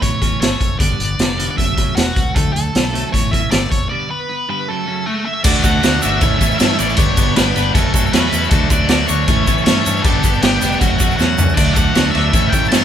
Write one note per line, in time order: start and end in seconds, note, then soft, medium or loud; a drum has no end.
0.01 0.31 A1 medium
0.01 0.20 A2 medium
0.01 0.20 E3 medium
0.01 0.20 A3 loud
0.01 0.40 C#5 medium
0.01 kick medium
0.01 closed hi-hat medium
0.21 0.40 A2 medium
0.21 0.40 E3 medium
0.21 0.40 A3 medium
0.21 0.80 C#4 medium
0.21 kick medium
0.21 closed hi-hat medium
0.41 0.56 G1 medium
0.41 0.59 A2 medium
0.41 0.59 E3 medium
0.41 0.80 A4 medium
0.41 0.77 C#5 medium
0.41 snare loud
0.41 closed hi-hat loud
0.61 0.75 F#1 medium
0.61 0.78 A2 medium
0.61 0.78 E3 medium
0.61 0.79 A3 medium
0.61 kick medium
0.61 closed hi-hat medium
0.79 0.94 G1 medium
0.79 0.98 G2 loud
0.79 0.98 D3 medium
0.79 0.99 G3 medium
0.79 0.99 B3 medium
0.79 1.46 D5 loud
0.79 kick loud
0.79 closed hi-hat loud
0.99 1.15 G1 medium
0.99 1.16 G2 medium
0.99 1.17 D3 medium
0.99 1.19 B3 medium
0.99 closed hi-hat medium
1.18 1.47 F1 medium
1.18 1.36 G2 medium
1.18 1.36 D3 medium
1.18 1.38 B3 medium
1.18 snare loud
1.18 closed hi-hat medium
1.37 1.56 G2 medium
1.37 1.56 D3 loud
1.37 1.56 G3 loud
1.37 1.58 B3 medium
1.37 closed hi-hat medium
1.51 1.57 D5 medium
1.57 1.86 F#1 medium
1.57 1.74 F#2 medium
1.57 1.76 C#3 medium
1.57 1.76 F#3 loud
1.57 2.17 A3 medium
1.57 1.94 E5 medium
1.57 kick medium
1.57 closed hi-hat medium
1.76 1.94 F#2 medium
1.76 1.95 C#3 medium
1.76 1.95 F#3 loud
1.76 2.36 C#4 medium
1.76 kick medium
1.76 closed hi-hat medium
1.95 2.11 E1 medium
1.95 2.14 F#2 medium
1.95 2.14 C#3 medium
1.95 2.36 F#4 medium
1.95 snare loud
1.95 closed hi-hat medium
2.16 2.30 C#2 medium
2.16 2.33 F#2 medium
2.16 2.33 C#3 medium
2.16 2.36 A3 medium
2.16 kick medium
2.16 closed hi-hat medium
2.35 2.50 D2 loud
2.35 2.53 D3 medium
2.35 2.54 F#3 medium
2.35 2.54 A3 loud
2.35 2.52 A4 medium
2.35 kick loud
2.35 closed hi-hat medium
2.53 2.69 D2 medium
2.53 2.72 D3 medium
2.53 2.72 F#3 medium
2.53 2.74 A3 medium
2.53 3.08 A4 loud
2.53 closed hi-hat medium
2.73 3.03 B1 medium
2.73 2.91 D3 medium
2.73 2.91 F#3 medium
2.73 2.93 A3 medium
2.73 snare loud
2.73 closed hi-hat medium
2.93 3.11 D3 medium
2.93 3.11 F#3 loud
2.93 3.12 A3 loud
2.93 closed hi-hat medium
3.12 3.41 A1 medium
3.12 3.31 A2 medium
3.12 3.31 E3 medium
3.12 3.31 A3 loud
3.12 3.31 C#5 loud
3.12 kick medium
3.12 closed hi-hat medium
3.31 3.50 A2 medium
3.31 3.50 E3 loud
3.31 3.51 A3 loud
3.31 3.90 C#4 medium
3.31 3.51 E5 medium
3.31 kick medium
3.31 closed hi-hat medium
3.51 3.66 G1 medium
3.51 3.69 A2 medium
3.51 3.69 E3 medium
3.51 3.90 A4 medium
3.51 3.70 D5 medium
3.51 snare loud
3.51 closed hi-hat loud
3.71 3.86 F#1 medium
3.71 3.88 A2 medium
3.71 3.88 E3 medium
3.71 3.90 A3 medium
3.71 3.89 C#5 medium
3.71 kick medium
3.71 closed hi-hat medium
3.89 4.08 G2 medium
3.89 4.09 D3 medium
3.89 4.09 G3 loud
3.89 4.08 B3 medium
3.89 4.08 D5 loud
4.09 4.27 G2 medium
4.09 4.27 D3 medium
4.09 4.28 B3 medium
4.09 4.49 B4 medium
4.29 4.47 G2 medium
4.29 4.47 D3 medium
4.29 4.48 B3 medium
4.49 4.67 G2 medium
4.49 4.67 D3 medium
4.49 4.67 G3 loud
4.49 4.67 B3 medium
4.49 4.68 B4 medium
4.67 4.85 F#2 medium
4.67 4.86 C#3 loud
4.67 4.87 F#3 loud
4.67 5.24 A3 medium
4.67 5.26 A4 medium
4.87 5.05 F#2 medium
4.87 5.05 C#3 medium
4.87 5.05 F#3 medium
4.87 5.45 C#4 medium
5.06 5.24 F#2 medium
5.06 5.24 C#3 medium
5.06 5.44 F#4 medium
5.06 5.24 E5 medium
5.25 5.43 F#2 medium
5.25 5.43 C#3 medium
5.25 5.43 A3 medium
5.25 5.43 E5 medium
5.44 5.59 D2 medium
5.44 5.61 D3 medium
5.44 5.62 A3 medium
5.44 5.62 D4 loud
5.44 5.63 F#4 loud
5.44 6.98 A4 medium
5.44 5.64 D5 medium
5.44 6.22 D5 medium
5.44 6.22 F#5 medium
5.44 6.22 D6 medium
5.44 kick loud
5.44 crash loud
5.44 crash medium
5.44 shaker medium
5.62 5.78 D2 loud
5.62 5.81 D3 medium
5.62 5.81 A3 loud
5.62 5.82 D4 medium
5.62 5.82 F#4 loud
5.62 6.04 F#5 medium
5.62 kick medium
5.62 crash medium
5.62 shaker loud
5.82 5.98 D2 loud
5.82 6.01 D3 loud
5.82 6.02 A3 loud
5.82 6.02 D4 loud
5.82 6.02 F#4 loud
5.82 snare loud
5.82 crash medium
5.82 shaker medium
6.02 6.18 G1 loud
6.02 6.20 D3 medium
6.02 6.20 A3 medium
6.02 6.21 D4 medium
6.02 6.21 F#4 loud
6.02 6.38 E5 loud
6.02 crash medium
6.02 shaker loud
6.21 6.36 A1 loud
6.21 6.39 A2 loud
6.21 6.39 E3 loud
6.21 6.40 A3 loud
6.21 6.40 C#4 loud
6.21 6.40 E4 loud
6.21 6.41 A4 medium
6.21 6.98 C#5 medium
6.21 6.98 E5 medium
6.21 6.98 C#6 medium
6.21 kick loud
6.21 crash medium
6.21 shaker medium
6.39 6.55 A1 medium
6.39 6.57 A2 medium
6.39 6.58 E3 medium
6.39 6.59 A3 loud
6.39 6.59 C#4 medium
6.39 6.59 E4 loud
6.39 6.60 A4 medium
6.39 6.57 E5 medium
6.39 kick medium
6.39 crash medium
6.39 shaker loud
6.58 6.75 G2 medium
6.58 6.77 A2 loud
6.58 6.78 E3 loud
6.58 6.78 A3 loud
6.58 6.78 C#4 loud
6.58 6.78 E4 loud
6.58 6.79 A4 loud
6.58 6.79 E5 medium
6.58 snare loud
6.58 crash loud
6.58 shaker medium
6.78 6.94 A1 loud
6.78 6.97 A2 medium
6.78 6.97 E3 medium
6.78 6.97 A3 medium
6.78 6.97 C#4 medium
6.78 6.97 E4 medium
6.78 6.98 A4 medium
6.78 6.96 D5 medium
6.78 crash medium
6.78 shaker loud
6.89 shaker soft
6.97 7.13 G1 loud
6.97 7.15 G2 loud
6.97 7.15 D3 loud
6.97 7.16 G3 loud
6.97 7.16 B3 loud
6.97 7.74 D4 medium
6.97 7.17 D4 loud
6.97 7.17 G4 loud
6.97 7.74 B4 medium
6.97 7.37 C#5 loud
6.97 7.74 G5 medium
6.97 kick loud
6.97 crash medium
6.97 shaker medium
7.17 7.32 G1 medium
7.17 7.34 G2 medium
7.17 7.35 D3 medium
7.17 7.35 G3 medium
7.17 7.35 B3 loud
7.17 7.36 D4 medium
7.17 7.37 G4 medium
7.17 kick loud
7.17 crash medium
7.17 shaker medium
7.35 7.52 G1 medium
7.35 7.53 G2 loud
7.35 7.54 D3 loud
7.35 7.54 G3 loud
7.35 7.55 B3 loud
7.35 7.55 D4 loud
7.35 7.56 G4 loud
7.35 7.74 B4 medium
7.35 snare loud
7.35 crash loud
7.35 shaker medium
7.54 7.71 G1 medium
7.54 7.73 G2 medium
7.54 7.74 D3 medium
7.54 7.74 G3 medium
7.54 7.74 B3 loud
7.54 7.74 D4 loud
7.54 7.75 G4 loud
7.54 snare soft
7.54 crash medium
7.54 shaker medium
7.74 7.89 F#1 loud
7.74 7.93 F#2 loud
7.74 7.93 C#3 loud
7.74 7.93 F#3 loud
7.74 7.94 A3 loud
7.74 7.94 C#4 loud
7.74 7.94 F#4 medium
7.74 7.93 A4 medium
7.74 10.03 A4 medium
7.74 8.52 C#5 medium
7.74 8.50 F#5 medium
7.74 8.51 C#6 medium
7.74 kick loud
7.74 crash medium
7.74 shaker medium
7.94 8.08 F#1 medium
7.94 8.13 F#2 medium
7.94 8.13 C#3 medium
7.94 8.14 F#3 medium
7.94 8.14 A3 loud
7.94 8.14 C#4 medium
7.94 8.13 F#4 medium
7.94 8.05 A4 medium
7.94 kick medium
7.94 crash medium
7.94 shaker loud
8.06 8.13 A4 medium
8.06 shaker soft
8.13 8.28 E2 loud
8.13 8.32 F#2 medium
8.13 8.32 C#3 loud
8.13 8.33 F#3 loud
8.13 8.33 A3 loud
8.13 8.33 C#4 loud
8.13 8.32 F#4 loud
8.13 8.50 B4 medium
8.13 snare loud
8.13 crash medium
8.13 shaker medium
8.32 8.47 E2 medium
8.32 8.51 F#2 medium
8.32 8.51 C#3 medium
8.32 8.51 F#3 medium
8.32 8.51 A3 medium
8.32 8.52 C#4 medium
8.32 8.51 F#4 medium
8.32 crash medium
8.32 shaker loud
8.43 shaker soft
8.50 8.66 D2 loud
8.50 8.69 D3 loud
8.50 8.70 F#3 loud
8.50 8.70 A3 loud
8.50 8.70 D4 loud
8.50 8.71 F#4 loud
8.50 8.71 A4 medium
8.50 9.27 D5 medium
8.50 9.27 F#5 medium
8.50 9.27 D6 medium
8.50 kick loud
8.50 crash medium
8.50 shaker medium
8.70 8.85 D2 medium
8.70 8.88 D3 medium
8.70 8.89 F#3 loud
8.70 8.90 A3 loud
8.70 8.90 D4 loud
8.70 8.90 F#4 medium
8.70 8.89 D5 medium
8.70 kick medium
8.70 crash medium
8.70 shaker loud
8.89 9.04 D2 medium
8.89 9.08 D3 loud
8.89 9.07 F#3 loud
8.89 9.08 A3 loud
8.89 9.09 D4 loud
8.89 9.08 F#4 loud
8.89 9.07 D5 medium
8.89 snare loud
8.89 crash medium
8.89 shaker medium
9.08 9.24 D2 medium
9.08 9.27 D3 medium
9.08 9.27 F#3 medium
9.08 9.27 A3 loud
9.08 9.27 D4 loud
9.08 9.27 F#4 loud
9.08 9.62 C#5 loud
9.08 crash medium
9.08 shaker medium
9.28 9.43 A1 loud
9.28 9.46 A2 loud
9.28 9.46 E3 loud
9.28 9.47 A3 loud
9.28 9.47 C#4 loud
9.28 9.47 E4 loud
9.28 9.47 A4 loud
9.28 10.04 C#5 medium
9.28 10.04 E5 medium
9.28 10.05 C#6 medium
9.28 kick loud
9.28 crash medium
9.28 shaker medium
9.47 9.62 A1 medium
9.47 9.65 A2 medium
9.47 9.66 E3 medium
9.47 9.66 A3 medium
9.47 9.67 C#4 medium
9.47 9.67 E4 loud
9.47 9.67 A4 loud
9.47 kick medium
9.47 crash medium
9.47 shaker medium
9.58 shaker soft
9.64 9.81 G2 medium
9.64 9.83 A2 loud
9.64 9.84 E3 loud
9.64 9.84 A3 loud
9.64 9.85 C#4 loud
9.64 9.85 E4 loud
9.64 9.86 A4 loud
9.64 10.05 C#5 medium
9.64 snare loud
9.64 crash medium
9.64 shaker medium
9.84 10.00 G2 medium
9.84 10.03 A2 medium
9.84 10.03 E3 medium
9.84 10.03 A3 medium
9.84 10.04 C#4 medium
9.84 10.04 E4 medium
9.84 10.04 A4 loud
9.84 crash medium
9.84 shaker loud
9.96 shaker soft
10.03 10.19 G1 loud
10.03 10.22 G2 loud
10.03 10.23 D3 medium
10.03 10.23 G3 loud
10.03 10.24 B3 loud
10.03 10.24 D4 loud
10.03 10.24 G4 loud
10.03 10.43 A4 loud
10.03 10.81 B4 medium
10.03 10.81 D5 medium
10.03 10.81 G5 medium
10.03 10.81 D6 medium
10.03 kick loud
10.03 crash medium
10.03 shaker medium
10.24 10.38 G1 medium
10.24 10.42 G2 medium
10.24 10.42 D3 medium
10.24 10.43 G3 medium
10.24 10.43 B3 medium
10.24 10.44 D4 loud
10.24 10.42 G4 loud
10.24 kick loud
10.24 crash medium
10.24 shaker medium
10.42 10.57 G1 medium
10.42 10.61 G2 loud
10.42 10.61 D3 loud
10.42 10.62 G3 loud
10.42 10.62 B3 loud
10.42 10.62 D4 loud
10.42 10.78 G4 medium
10.42 10.61 G4 loud
10.42 snare loud
10.42 crash medium
10.42 shaker medium
10.62 10.76 F1 medium
10.62 10.80 G2 medium
10.62 10.80 D3 medium
10.62 10.80 G3 loud
10.62 10.81 B3 loud
10.62 10.81 D4 loud
10.62 10.80 G4 loud
10.62 snare soft
10.62 crash medium
10.62 shaker medium
10.72 shaker soft
10.79 10.96 F#1 medium
10.79 10.99 F#2 medium
10.79 10.99 C#3 loud
10.79 11.00 F#3 loud
10.79 11.00 A3 loud
10.79 11.00 C#4 loud
10.79 11.20 F#4 medium
10.79 11.00 F#4 medium
10.79 12.84 A4 medium
10.79 11.56 C#5 medium
10.79 12.31 F#5 medium
10.79 11.56 C#6 medium
10.79 kick loud
10.79 crash medium
10.79 shaker medium
11.00 11.14 F#1 medium
11.00 11.17 F#2 medium
11.00 11.18 C#3 medium
11.00 11.18 F#3 medium
11.00 11.18 A3 medium
11.00 11.19 C#4 medium
11.00 11.18 F#4 loud
11.00 kick medium
11.00 crash medium
11.00 shaker loud
11.11 shaker soft
11.17 11.34 E2 medium
11.17 11.37 F#2 medium
11.17 11.37 C#3 medium
11.17 11.38 F#3 loud
11.17 11.38 A3 loud
11.17 11.38 C#4 loud
11.17 11.38 F#4 loud
11.17 11.57 F#5 loud
11.17 snare medium
11.17 shaker medium
11.38 11.53 C#2 loud
11.38 11.56 F#2 medium
11.38 11.56 C#3 medium
11.38 11.55 F#3 medium
11.38 11.56 A3 medium
11.38 11.57 C#4 medium
11.38 11.56 F#4 medium
11.38 floor tom loud
11.38 shaker loud
11.49 shaker soft
11.55 11.72 D2 loud
11.55 11.75 D3 medium
11.55 11.75 F#3 medium
11.55 11.76 A3 loud
11.55 11.76 D4 loud
11.55 11.75 F#4 medium
11.55 11.76 D5 loud
11.55 12.33 D5 medium
11.55 12.33 D6 medium
11.55 kick loud
11.55 crash loud
11.55 crash medium
11.55 shaker medium
11.73 11.91 D2 medium
11.73 11.94 D3 medium
11.73 11.94 F#3 medium
11.73 11.94 A3 medium
11.73 11.94 F#4 loud
11.73 12.10 F#5 loud
11.73 kick loud
11.73 crash medium
11.73 shaker loud
11.77 11.95 D4 loud
11.95 12.10 D2 medium
11.95 12.13 D3 loud
11.95 12.14 F#3 medium
11.95 12.14 A3 loud
11.95 12.15 D4 loud
11.95 12.13 F#4 loud
11.95 snare loud
11.95 crash medium
11.95 shaker medium
12.11 12.32 D3 medium
12.11 12.32 F#4 loud
12.11 12.52 E5 loud
12.11 crash medium
12.15 12.29 D2 medium
12.15 12.33 F#3 loud
12.15 12.33 A3 loud
12.15 12.33 D4 medium
12.15 snare soft
12.33 12.48 A1 loud
12.33 12.52 A2 medium
12.33 12.53 E3 loud
12.33 12.53 A3 loud
12.33 12.53 C#4 loud
12.33 12.54 E4 loud
12.33 12.52 A4 loud
12.33 12.84 C#5 medium
12.33 12.84 E5 medium
12.33 12.84 C#6 medium
12.33 kick loud
12.33 crash medium
12.33 shaker medium
12.49 12.67 A1 medium
12.49 12.68 G5 loud
12.49 kick medium
12.49 crash medium
12.53 12.70 A2 medium
12.53 12.71 E3 medium
12.53 12.71 A3 medium
12.53 12.72 C#4 medium
12.53 12.72 E4 medium
12.53 12.72 A4 medium
12.53 shaker loud
12.64 shaker soft
12.69 12.84 G2 medium
12.69 12.84 A2 loud
12.69 12.84 E3 loud
12.69 12.84 A3 loud
12.69 12.84 A5 loud
12.69 snare loud
12.69 crash medium
12.73 12.84 C#4 loud
12.73 12.84 E4 loud
12.73 12.84 A4 loud
12.73 shaker medium